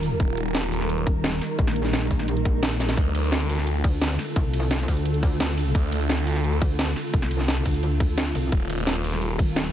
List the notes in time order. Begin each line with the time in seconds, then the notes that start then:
Already playing: D#1 D#3 G3 F4 A#4
0.03 open hi-hat
0.20 D#1 D#4, kick, closed hi-hat
0.37 closed hi-hat
0.55 snare, closed hi-hat
0.63 snare
0.72 D#1, open hi-hat
0.81 snare, closed hi-hat
0.89 closed hi-hat
0.98 closed hi-hat
1.07 D#1, kick, closed hi-hat
1.24 snare, closed hi-hat
1.41 snare, open hi-hat
1.59 A#1, kick, closed hi-hat
1.67 snare
1.76 closed hi-hat
1.85 snare
1.93 snare, closed hi-hat
2.02 snare
2.11 A#1, kick, open hi-hat
2.19 snare, closed hi-hat
2.28 closed hi-hat
2.37 closed hi-hat
2.45 A#1, kick, closed hi-hat
2.63 snare, closed hi-hat
2.71 closed hi-hat
2.80 snare, open hi-hat
2.89 snare
2.97 D2 D3 A3 F4 A4, kick, closed hi-hat
3.15 closed hi-hat, ride
3.32 snare, closed hi-hat
3.41 snare
3.49 D2, open hi-hat, ride
3.58 snare, closed hi-hat
3.67 closed hi-hat
3.75 closed hi-hat
3.84 D2, kick, closed hi-hat, ride
4.02 snare, closed hi-hat
4.19 snare, open hi-hat, ride
4.36 C2, kick, closed hi-hat
4.54 closed hi-hat, ride
4.71 snare, closed hi-hat
4.80 snare
4.88 D2, kick, open hi-hat, ride
4.97 closed hi-hat
5.06 closed hi-hat
5.14 closed hi-hat
5.23 kick, closed hi-hat, ride
5.40 D2, snare, closed hi-hat
5.58 open hi-hat, ride
5.75 D2, kick, closed hi-hat
5.92 closed hi-hat, ride
6.10 snare, closed hi-hat
6.18 snare
6.27 D2, open hi-hat, ride
6.36 snare, closed hi-hat
6.44 closed hi-hat
6.53 closed hi-hat
6.62 D2, kick, closed hi-hat, ride
6.79 snare, closed hi-hat
6.96 snare, open hi-hat, ride
7.14 C2, kick, closed hi-hat
7.22 snare
7.31 closed hi-hat, ride
7.40 snare
7.48 snare, closed hi-hat
7.57 snare
7.66 D2, kick, open hi-hat, ride
7.74 closed hi-hat
7.83 closed hi-hat
7.92 closed hi-hat
8.00 kick, closed hi-hat, ride
8.18 D2, snare, closed hi-hat
8.26 closed hi-hat
8.35 C2, open hi-hat, ride
8.52 D#1 D#3 G3 A#4, kick, closed hi-hat
8.70 closed hi-hat, ride
8.87 snare, closed hi-hat
8.96 snare
9.04 D#1, open hi-hat, ride
9.13 snare, closed hi-hat
9.22 closed hi-hat
9.30 closed hi-hat
9.39 D#1, kick, closed hi-hat, ride
9.56 snare, closed hi-hat